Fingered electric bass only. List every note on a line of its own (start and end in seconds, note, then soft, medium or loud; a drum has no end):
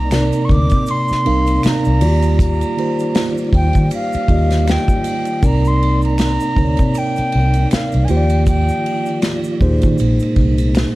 0.00 0.30 C2 loud
0.51 0.67 D2 loud
0.73 0.85 C3 loud
1.11 muted fingered electric bass stroke soft
1.27 1.56 C2 loud
1.65 muted fingered electric bass stroke soft
1.87 2.03 C2 medium
2.03 2.62 D#2 loud
3.54 3.70 D#2 loud
3.77 3.89 D#3 loud
4.15 muted fingered electric bass stroke medium
4.29 4.76 D#2 loud
5.44 6.37 C2 loud
6.58 6.74 D2 loud
6.80 6.92 C3 loud
7.19 muted fingered electric bass stroke soft
7.35 7.64 C2 loud
7.73 muted fingered electric bass stroke medium
7.95 8.07 C2 loud
8.10 8.69 D#2 loud
9.62 9.78 D#2 loud
9.85 9.97 D#3 loud
10.01 10.17 A#1 loud
10.38 10.84 C2 loud